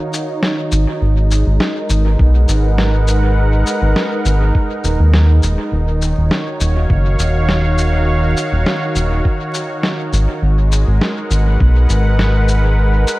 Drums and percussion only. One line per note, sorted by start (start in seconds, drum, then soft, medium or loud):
0.13 shaker medium
0.43 snare medium
0.72 shaker medium
1.31 shaker medium
1.60 snare medium
1.90 shaker medium
2.19 kick loud
2.49 shaker medium
2.78 snare medium
3.08 shaker medium
3.67 shaker soft
3.96 snare medium
4.26 shaker medium
4.55 kick loud
4.84 shaker medium
5.13 snare medium
5.43 shaker soft
6.02 shaker soft
6.31 snare medium
6.61 shaker soft
6.90 kick loud
7.19 shaker medium
7.49 snare medium
7.78 shaker soft
8.37 shaker soft
8.66 snare medium
8.96 shaker soft
9.25 kick loud
9.54 shaker soft
9.83 snare medium
10.13 shaker soft
10.72 shaker medium
11.01 snare medium
11.31 shaker soft
11.60 kick loud
11.90 shaker medium
12.19 snare medium
12.48 shaker soft
13.07 shaker medium